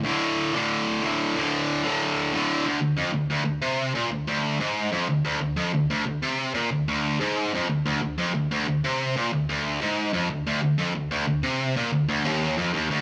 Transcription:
X:1
M:4/4
L:1/8
Q:1/4=184
K:Cmix
V:1 name="Distorted electric guitar" clef=bass
[D,,A,,D,]3 [D,,A,,D,]3 [D,,A,,D,]2 | [D,,A,,D,]3 [D,,A,,D,]3 [D,,A,,D,]2 | D,, D,, F,, D,, D,, D,, C,2 | B,, D,, D,,2 ^G,,2 F,, D,, |
D,, D,, F,, D,, D,, D,, C,2 | B,, D,, D,,2 ^G,,2 F,, D,, | D,, D,, F,, D,, D,, D,, C,2 | B,, D,, D,,2 ^G,,2 F,, D,, |
D,, D,, F,, D,, D,, D,, C,2 | B,, D,, D,, _E,,2 F,, E,, D,, |]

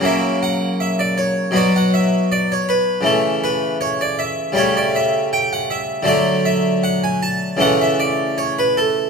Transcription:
X:1
M:4/4
L:1/16
Q:1/4=79
K:A
V:1 name="Harpsichord"
e2 f2 e d c2 d f e2 d c B2 | A2 B2 c d e2 c d e2 =g f e2 | d2 e2 f g a2 f e d2 c B A2 |]
V:2 name="Harpsichord" clef=bass
[C,F,^A,F]8 [B,,F,B,F]8 | [C,E,A,]8 [C,=G,A,A]8 | [D,F,A,A]8 [C,E,A,A]8 |]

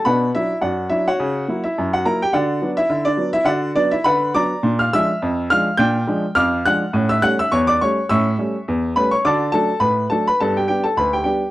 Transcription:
X:1
M:2/4
L:1/16
Q:"Swing 16ths" 1/4=104
K:Bm
V:1 name="Upright piano"
[Bfb]2 [Ee]2 [Fdf]2 [Ee] [Fcf]- | [Fcf]3 [Ee]2 [Ff] [^A^a] [Gg] | [Fdf]3 [Ee]2 [Dd]2 [Ee] | [Fdf]2 [Dd] [Ee] [Bfb]2 [d_bd']2- |
[d_bd'] [=f=f'] [ee']4 [ff']2 | [gg']4 [=fd'=f']2 [^f^f']2- | [ff'] [ee'] [ff'] [ee'] [cc'] [dd'] [cc']2 | [ec'e']4 z2 [Bb] [cc'] |
[dad']2 [Aa]2 [Bb]2 [Aa] [Bb] | [Aa] [Gg] [Gg] [Aa] [Bb] [Gg] [Gg]2 |]
V:2 name="Upright piano" clef=bass
[B,,D]2 [F,D]2 F,,2 [F,D]2 | C,2 [F,^A,E]2 F,,2 [F,A,E]2 | D,2 [F,B,D]2 D,2 [F,B,D]2 | D,2 [F,B,]2 D,2 [F,B,D]2 |
[_B,,D]2 [=F,_A,D]2 =F,,2 [F,A,D]2 | [_B,,D]2 [=F,_A,D]2 =F,,2 [F,A,D]2 | [A,,C]2 [G,A,C]2 E,,2 [G,A,C]2 | [A,,C]2 [G,A,C]2 E,,2 [G,A,C]2 |
[D,F]2 [F,A,D]2 A,,2 [F,A,D]2 | [G,,B,]2 [G,B,D]2 D,,2 [G,B,D]2 |]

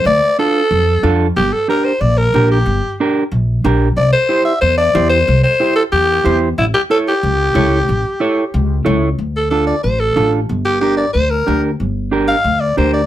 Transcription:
X:1
M:4/4
L:1/8
Q:1/4=184
K:Dm
V:1 name="Alto saxophone"
d2 A4- A z | G A B c d B2 G- | G2 z6 | d c2 e c d2 c- |
c c2 A G3 z | E G A G4- G- | G6 z2 | z A A d c A2 z |
z G G d c B2 z | z3 f2 d c d |]
V:2 name="Clean electric guitar"
z2 [DFA] z3 [DFA] z | z2 [DGB] z3 [DGB] z | z2 [DGB] z3 [DGB] z | z2 [EGc] z3 [EGc] z |
z2 [EGc] z3 [EGc] z | z2 [EA^c] z3 [EAc] z | z2 [EA^c] z3 [EAc] z | z2 [DFA] z3 [DFA] z |
z2 [DGB] z3 [DGB] z | z2 [DGB] z3 [DGB] z |]
V:3 name="Upright bass" clef=bass
D,, z3 F,,2 F,,2 | G,,, z3 B,,,2 B,,,2 | G,,, z3 B,,,2 B,,,2 | C,, z3 E,,2 E,,2 |
C,, z3 E,,2 E,,2 | A,,, z3 ^C,,2 C,,2 | A,,, z3 ^C,,2 C,,2 | D,,4 A,,,2 A,,,2 |
G,,,4 D,,2 D,,2 | G,,,4 D,,2 D,,2 |]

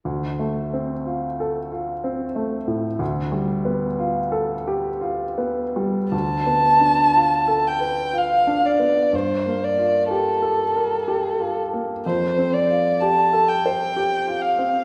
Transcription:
X:1
M:3/4
L:1/8
Q:1/4=62
K:Dm
V:1 name="Violin"
z6 | z6 | a3 g f d | c d A3 z |
c d a g2 f |]
V:2 name="Grand piano"
(3D,, A, C (3F A F (3C A, A,, | (3D,, G, =B, (3F A G (3F B, G, | (3D,, =B, D (3F A =B (3F D B, | (3G,, B, F (3G A B (3G F B, |
(3F,, C F (3G A c (3G F C |]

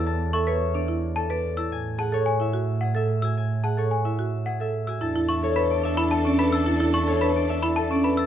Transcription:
X:1
M:3/4
L:1/16
Q:1/4=109
K:Emix
V:1 name="Xylophone"
z2 c' z4 z a z2 e' | z2 a z g z3 f z2 e' | z2 a z g z3 f z2 e' | z2 c' z b z2 b a z b e' |
z2 c' z b z2 b a z b e' |]
V:2 name="Harp"
[Acdea]2 e c2 d3 A d2 a | g2 f c2 e3 G e2 g | g2 f c2 e3 G e2 g | a2 e c2 d e2 A d2 a |
a2 e c2 d e2 A d2 a |]
V:3 name="Marimba"
z2 A B z D E z2 B z E | z2 G A z E F z2 A z F | z2 G A z E F z2 A z F | E E z A B z D E z C B z |
E E z A B z D E z C B z |]
V:4 name="Violin section"
z12 | z12 | z12 | [DA]12- |
[DA]8- [DA]3 z |]
V:5 name="French horn"
z12 | z12 | z12 | D12- |
D8- D3 z |]
V:6 name="Double bass" clef=bass
E,,12 | A,,12- | A,,12 | E,,12- |
E,,12 |]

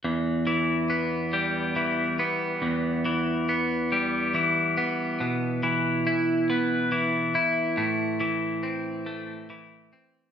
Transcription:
X:1
M:6/8
L:1/8
Q:3/8=47
K:Em
V:1 name="Clean electric guitar" clef=bass
E,, E, B, G, E, B, | E,, E, B, G, E, B, | B,, E, E B, E, E | A,, E, C A, E, C |]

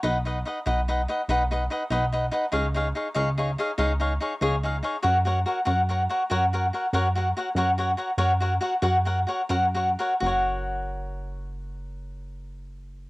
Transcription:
X:1
M:6/8
L:1/8
Q:3/8=95
K:F#
V:1 name="Cavaquinho"
[DBdf] [DBdf] [DBdf] [DBdf] [DBdf] [DBdf] | [DBdf] [DBdf] [DBdf] [DBdf] [DBdf] [DBdf] | [DGce] [DGce] [DGce] [DGce] [DGce] [DGce] | [DGce] [DGce] [DGce] [DGce] [DGce] [DGce] |
[FAcf] [FAcf] [FAcf] [FAcf] [FAcf] [FAcf] | [FAcf] [FAcf] [FAcf] [FAcf] [FAcf] [FAcf] | [FAcf] [FAcf] [FAcf] [FAcf] [FAcf] [FAcf] | [FAcf] [FAcf] [FAcf] [FAcf] [FAcf] [FAcf] |
[FAcf]6- | [FAcf]6 |]
V:2 name="Analog synth bass" clef=bass
B,,,3 B,,,3 | B,,,3 B,,,3 | C,,3 C,,3 | C,,3 C,,3 |
F,,3 F,,3 | F,,3 F,,3 | F,,3 F,,3 | F,,3 F,,3 |
F,,,6- | F,,,6 |]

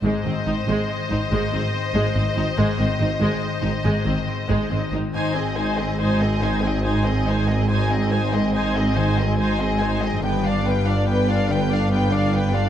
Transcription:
X:1
M:12/8
L:1/8
Q:3/8=95
K:Ab
V:1 name="Violin section"
e12- | e8- e3 z | a e a e a e a e a e a e | a e a e a e a e a e a e |
g f g f g f g f g f g f |]
V:2 name="Violin section"
c12- | c8- c3 z | c A c A c A c A c A c A | c A c A c A c A c A c A |
=B =d B d B d B d B d B d |]
V:3 name="Harp"
A,, E, C E e C A,, E, C E e C | A,, E, C E e C A,, E, C E e C | A,, C E c e E E, C E c e E | A,, C E c e E E, C E c e E |
G,, =D F =d =B F =D, D F d B F |]
V:4 name="Viola section"
A, C E A, z E A, C z A, C E | A, C E A, z E A, C z A, C E | E C E C E C E C E C E C | E C E C E C E C E C E C |
=B, =D B, D B, D B, D B, D B, D |]
V:5 name="Cello section" clef=bass
A,, A,, A,, A,, z A,, A,, A,, z A,, A,, A,, | A,, A,, A,, A,, z A,, A,, A,, z A,, A,, A,, | A,,12- | A,,12 |
G,,12 |]
V:6 name="Double bass section" clef=bass
A,,, A,,, A,,, A,,, z A,,, A,,, A,,, z A,,, A,,, A,,, | A,,, A,,, A,,, A,,, z A,,, A,,, A,,, z A,,, A,,, A,,, | A,,,12- | A,,,12 |
G,,,12 |]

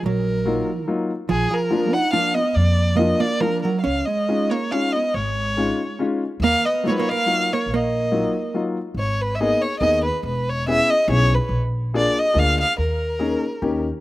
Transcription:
X:1
M:3/4
L:1/16
Q:1/4=142
K:Ebm
V:1 name="Violin"
B8 z4 | A2 B4 g2 f2 e2 | =d4 e2 d2 B2 B2 | f2 e4 d2 f2 e2 |
d8 z4 | f2 e2 d/2 c/2 d f4 d2 | e8 z4 | [K:G#m] c2 B3/2 e/2 d2 c2 d2 B2 |
B2 c2 e2 d2 c2 B2 | z4 =d2 ^d2 ^e2 e2 | A8- A2 z2 |]
V:2 name="Upright piano"
z4 [G,B,EF]2 z2 [G,B,EF]2 z2 | z4 [F,B,=DF]2 z2 [F,B,DF]2 z2 | z4 [F,B,=DF]2 z2 [F,B,DF]2 z2 | z4 [A,DEF]2 z2 [A,DEF]2 z2 |
z4 [A,DEF]2 z2 [A,DEF]2 z2 | z4 [G,B,EF]2 z2 [G,B,EF]2 z2 | z4 [G,B,EF]2 z2 [G,B,EF]2 z2 | [K:G#m] z4 [A,B,DG]2 z2 [A,B,DG]2 z2 |
z4 [B,CEG]2 z2 [B,CEG]2 z2 | z4 [A,=D^EG]2 z2 [A,DEG]2 z2 | z4 [A,CDG]2 z2 [A,CD=G]2 z2 |]
V:3 name="Hollow-body jazz guitar"
G,8 z4 | F,2 F,4 E2 =D2 C2 | B,4 B,2 B,2 F,2 G,2 | D2 A,4 B,2 D2 C2 |
A,8 z4 | B,2 C2 B,/2 A,/2 B, B,4 B,2 | B,8 z4 | [K:G#m] z12 |
z12 | z12 | z12 |]
V:4 name="Upright bass" clef=bass
B,,,8 z4 | B,,,2 z8 z2 | F,,8 z4 | D,,2 z8 z2 |
A,,,8 z4 | E,,2 z8 z2 | B,,,8 z4 | [K:G#m] G,,,8 D,,4 |
E,,,8 B,,,4 | A,,,8 =D,,4 | D,,8 D,,4 |]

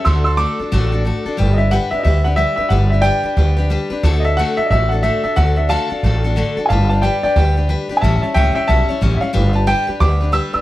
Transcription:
X:1
M:4/4
L:1/8
Q:"Swing" 1/4=181
K:Glyd
V:1 name="Upright piano"
[=c'e'] [c'e'] d'6 | z [_e=e] f e [_e=e] f e e | f e [dg]4 z2 | z [_e=e] f e [_e=e] f e e |
f e [=fa]4 z2 | [=f^ga] [fa] [d=g] [dg] g2 z2 | [e^ga] [ea] [e=g] [eg] [ea]2 z [e=f]- | [e=f] a g z d'2 e' e' |]
V:2 name="Steel-string acoustic guitar"
[D,A,DFA] [DFA] [A,DFA] [DFA] [D,A,DFA] [DFA] [A,DFA] [DFA] | [G,DGB] [DGB] [G,DGB] [DGB] [G,DGB] [DGB] [G,DGB] [DGB] | [G,DGB] [DGB] [G,DGB] [DGB] [G,DGB] [DGB] [G,DGB] [DGB] | [D,A,DFA] [DFA] [D,A,DFA] [DFA] [A,DFA] [DFA] [D,A,DFA] [DFA] |
[D,A,DFA] [DFA] [D,A,DFA] [DFA] [A,DFA] [DFA] [D,A,DFA] [DFA] | [G,DGB] [DGB] [G,DGB] [DGB] [G,DGB] [DGB] [G,DGB] [DGB] | [A,,E,G,CEc] [G,CEc] [A,,E,G,CEc] [G,CEc] [G,CEc] [G,CEc] [A,,E,G,CEc] [G,CEc] | [G,DGB] [DGB] [G,DGB] [DGB] [G,DGB] [DGB] [G,DGB] [DGB] |]
V:3 name="Upright bass" clef=bass
D,,3 z A,,,3 z | G,,,3 z D,,3 z | G,,,3 z D,,3 z | D,,3 z A,,,3 z |
D,,3 z A,,,3 z | G,,,3 z D,,3 z | A,,, z C,, z B,,, z A,,, z | G,,,3 z D,,3 z |]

